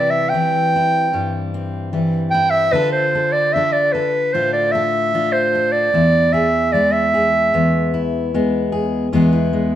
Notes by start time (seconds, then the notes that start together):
Already playing: C3 E3 G3 C4 E4 D5
0.10 E5
0.29 G5
0.34 E3 C4
0.76 E4
1.13 G2 G3
1.54 C4
1.93 E3 G3
2.31 E4 G5
2.51 E5
2.72 D3 D4 F4 A4 B4
2.92 C5
3.15 A4
3.32 D5
3.53 D4 A4 E5
3.73 D5
3.92 A4 B4
4.33 A2 F4 C5
4.53 D5
4.72 A4 E5
5.14 D4 F4
5.32 C5
5.55 A4
5.72 D5
5.94 E2 E4
6.33 G#4 E5
6.73 G#3 E4 D5
6.92 E5
7.14 G#4
7.53 E2 B3
7.94 E4
8.34 G#3 B3
8.72 G#4
9.13 E2 G#3 B3 E4 G#4
9.33 E4
9.53 G#3